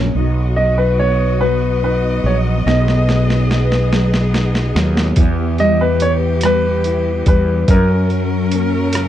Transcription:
Already playing: A#1 F#2 F#3 A#3 C#4 A#4
0.15 B1 B3 D#4 F#4 D#5
0.56 F#3 D#5
0.78 B4
0.99 B3 C#5
1.41 F#3 B4
1.83 D#4 B4
2.24 A#1 F#3 C#5
2.66 B1 B2 D#4 G#4 D#5, snare
2.88 snare
3.09 F#3, snare
3.30 snare
3.51 B3, snare
3.72 snare
3.92 F#3, snare
4.14 snare
4.33 D#4, snare
4.55 snare
4.75 D#2 F#3, snare
4.97 snare
5.16 E2 E3 E4 G4, kick, closed hi-hat
5.58 G3 D#5, closed hi-hat
5.81 B4
6.00 B3 C#5, closed hi-hat
6.41 G3, cross-stick, closed hi-hat
6.45 B4
6.84 E4, closed hi-hat
7.26 E2 G3 B4, kick, closed hi-hat
7.68 F#2 F#3 C#4 A#4, kick, closed hi-hat
8.10 F#3, closed hi-hat
8.51 A#3, closed hi-hat
8.93 C#3, cross-stick, closed hi-hat

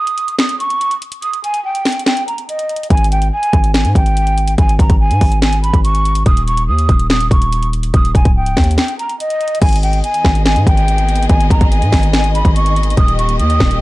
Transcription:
Already playing: D#6
0.07 closed hi-hat
0.18 closed hi-hat
0.28 closed hi-hat
0.39 D#6, finger snap, snare, closed hi-hat
0.49 closed hi-hat
0.60 C#6, closed hi-hat
0.70 closed hi-hat
0.81 closed hi-hat
0.91 closed hi-hat
1.02 closed hi-hat
1.12 closed hi-hat
1.22 D#6, closed hi-hat
1.33 closed hi-hat
1.44 G#5, closed hi-hat
1.54 closed hi-hat
1.64 G5
1.75 closed hi-hat
1.85 finger snap, snare, closed hi-hat, open hi-hat
1.92 closed hi-hat
1.99 closed hi-hat
2.06 G5, finger snap, snare, closed hi-hat
2.17 closed hi-hat
2.27 A#5, closed hi-hat
2.38 closed hi-hat
2.48 D#5, closed hi-hat
2.59 closed hi-hat
2.69 closed hi-hat
2.76 closed hi-hat
2.83 closed hi-hat
2.90 G#1 G#5, kick, closed hi-hat
2.97 closed hi-hat
3.04 closed hi-hat
3.11 G5, closed hi-hat
3.22 closed hi-hat
3.32 G#5
3.43 closed hi-hat
3.53 G#1, kick, closed hi-hat
3.64 closed hi-hat
3.74 G#5, finger snap, snare, closed hi-hat
3.85 G#2, closed hi-hat
3.95 G#1 G5, kick, closed hi-hat
4.06 closed hi-hat
4.17 closed hi-hat
4.27 closed hi-hat
4.38 closed hi-hat
4.48 closed hi-hat
4.58 G#1 G#5, kick, closed hi-hat
4.69 closed hi-hat
4.79 G#1 A#5, kick, closed hi-hat
4.90 G#1, kick, closed hi-hat
5.00 G#5
5.11 G#2, closed hi-hat
5.21 G#1, kick, closed hi-hat, open hi-hat
5.32 closed hi-hat
5.42 G#5, finger snap, snare, closed hi-hat
5.53 closed hi-hat
5.63 B5, closed hi-hat
5.73 G#1, kick, closed hi-hat
5.84 C#6, closed hi-hat
5.95 closed hi-hat
6.05 closed hi-hat
6.15 closed hi-hat
6.26 D#1 D#6, kick, closed hi-hat
6.37 closed hi-hat
6.47 C#6, closed hi-hat
6.57 closed hi-hat
6.68 D#2 D#6
6.79 closed hi-hat
6.89 D#1, kick, closed hi-hat
6.99 closed hi-hat
7.10 D#6, finger snap, snare, closed hi-hat
7.20 closed hi-hat
7.31 D#1 C#6, kick, closed hi-hat
7.42 closed hi-hat
7.52 closed hi-hat
7.63 closed hi-hat
7.73 closed hi-hat
7.83 closed hi-hat
7.94 D#1 D#6, kick, closed hi-hat
8.05 closed hi-hat
8.15 D#1 G#5, kick, closed hi-hat
8.25 C#1, kick, closed hi-hat
8.36 G5
8.46 closed hi-hat
8.57 D#2, finger snap, kick, snare, closed hi-hat, open hi-hat
8.64 closed hi-hat
8.71 closed hi-hat
8.78 G5, finger snap, snare, closed hi-hat
8.88 closed hi-hat
8.99 A#5, closed hi-hat
9.10 closed hi-hat
9.20 D#5, closed hi-hat
9.30 closed hi-hat
9.41 closed hi-hat
9.48 closed hi-hat
9.55 closed hi-hat
9.62 G#1 D#3 B3 G#4 D#5 G#5, kick, closed hi-hat, crash
9.69 closed hi-hat
9.73 closed hi-hat
9.76 closed hi-hat
9.83 G5, closed hi-hat
9.93 closed hi-hat
10.04 G#5, closed hi-hat
10.14 closed hi-hat
10.25 G#1, finger snap, kick, snare
10.35 closed hi-hat
10.46 G#5, finger snap, snare, closed hi-hat
10.56 G#2, closed hi-hat
10.67 G#1 G5, kick, closed hi-hat
10.77 closed hi-hat
10.88 closed hi-hat
10.98 closed hi-hat
11.09 closed hi-hat
11.16 closed hi-hat
11.23 closed hi-hat
11.29 G#1 G#5, kick, closed hi-hat
11.41 closed hi-hat
11.50 G#1 A#5, kick, closed hi-hat
11.61 G#1, kick, closed hi-hat
11.72 G#5, closed hi-hat
11.82 G#2, closed hi-hat
11.92 G#1, finger snap, kick, snare, open hi-hat
12.03 closed hi-hat
12.13 G#5, finger snap, snare, closed hi-hat
12.24 closed hi-hat
12.34 B5, closed hi-hat
12.45 G#1, kick, closed hi-hat
12.55 C#6, closed hi-hat
12.66 closed hi-hat
12.76 closed hi-hat
12.83 closed hi-hat
12.90 closed hi-hat
12.97 D#1 A#3 G4 D#6, kick, closed hi-hat
13.08 closed hi-hat
13.18 C#6, closed hi-hat
13.29 closed hi-hat
13.39 D#2 D#6, closed hi-hat
13.50 closed hi-hat
13.60 D#1, finger snap, kick, snare
13.71 closed hi-hat

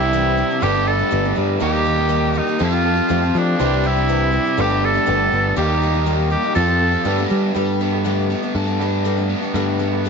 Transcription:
Already playing: C2 C3 G3 C4 D4 E4 G4 C5 D5 G5
0.01 G3 C4 D4 G4
0.13 C3 E3 G3 C4 D4 G4
0.37 G3 C4 D4 G4
0.51 G3 C4 D4 G4
0.61 G1 G2 D3 G3 A3 B3 D4 G4 A4 B4 A5
0.75 A3 B3 D4 G4
0.87 B3 D4 G4 A4
0.99 A3 B3 D4 G4
1.11 G1 G2 D3 A3 B3 D4 G4
1.24 A3 B3 D4 G4
1.35 G2 A3 B3 D4 G4
1.60 D#2 D#3 G3 A#3 D#4 G4 A#4 D#5 A#5
1.85 G3 A#3 D#4 G4
1.98 A#3 D#4 G4
2.09 D#3 G3 A#3 D#4 G4
2.34 G3 A#3 D#4 G4
2.38 D#4
2.47 A#3 D#4 G4
2.59 F2 F3 A3 C4 F4 G4 A4 C5 F5 A5
2.64 F4 A4
2.71 C4 F4 G4
2.84 C4 F4 G4 A4
2.95 C4 F4 G4
3.09 F2 F3 A3 C4 F4 G4
3.22 C4 F4 G4
3.34 F3 A3 C4 D4 F4 G4
3.59 C2 C3 E3 G3 C4 D4 E4 G4 C5 D5 G5
3.84 G3 C4 D4 E4 G4
3.96 G3 C4 D4 G4
4.09 C3 E3 G3 C4 D4 G4
4.32 G3 C4 D4 G4
4.45 G3 C4 D4 G4
4.57 G1 G2 D3 G3 A3 B3 D4 G4 A4 B4 A5
4.69 A3 B3 D4 G4
4.83 B3 D4 G4 A4
4.94 A3 B3 D4 G4
5.06 G1 G2 D3 A3 B3 D4 G4
5.32 G1 A3 B3 D4 G4
5.56 D#2 D#3 G3 A#3 D#4 G4 A#4 D#5 A#5
5.81 G3 A#3 D#4 G4
5.94 A#3 D#4 G4
6.06 D#3 G3 A#3 D#4 G4
6.30 G3 A#3 D#4 G4
6.42 A#3 D#4 G4
6.55 F2 F3 A3 C4 F4 G4 A4 C5 F5 A5
6.59 A4
6.67 C4 F4 G4
6.80 C4 F4 G4 A4
6.91 C4 G4
7.04 G2 D3 G3 A3 B3 D4 G4 A4 B4 D5
7.18 A3 B3 D4 G4
7.30 G3 A3 B3 D4 G4
7.54 G2 D3 G3 A3 B3 D4 G4 A4
7.80 A3 B3 D4 G4
7.92 B3 G4 A4
8.04 G2 D3 G3 A3 B3 D4 G4
8.30 A3 B3 D4 G4
8.42 A3 B3 D4 G4
8.55 G2 A4
8.66 A3 B3 D4 G4
8.79 A3 B3 D4 G4 A4
9.05 G2 D3 G3 A3 B3 D4 G4
9.17 A3 B3 D4 G4
9.30 B3
9.42 A3 B3 D4 G4
9.54 G2 D3 G3 A3 B3 D4 G4 A4
9.79 A3 B3 D4 G4
9.92 B3 G4 A4
10.05 G2 D3 G3 A3 B3

